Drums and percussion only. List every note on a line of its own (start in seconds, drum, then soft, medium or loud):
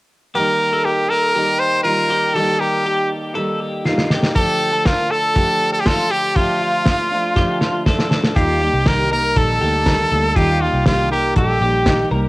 3.85 snare soft
3.98 snare medium
4.10 snare medium
4.23 snare medium
4.36 kick medium
4.36 closed hi-hat medium
4.85 kick loud
4.85 snare loud
4.85 closed hi-hat medium
5.35 kick loud
5.35 closed hi-hat medium
5.86 kick medium
5.86 snare loud
5.86 closed hi-hat medium
6.36 kick loud
6.36 closed hi-hat medium
6.86 kick medium
6.86 snare loud
6.86 closed hi-hat medium
7.36 kick medium
7.36 snare soft
7.61 snare medium
7.86 kick medium
7.86 snare medium
7.99 snare medium
8.11 snare medium
8.24 snare medium
8.36 kick loud
8.36 closed hi-hat medium
8.86 kick loud
8.86 snare loud
8.86 closed hi-hat medium
9.36 kick medium
9.36 closed hi-hat medium
9.86 kick loud
9.86 snare loud
9.86 closed hi-hat soft
10.36 kick medium
10.36 closed hi-hat medium
10.86 kick loud
10.86 snare loud
10.86 closed hi-hat medium
11.36 kick medium
11.36 closed hi-hat medium
11.86 kick medium
11.86 snare loud
11.86 closed hi-hat medium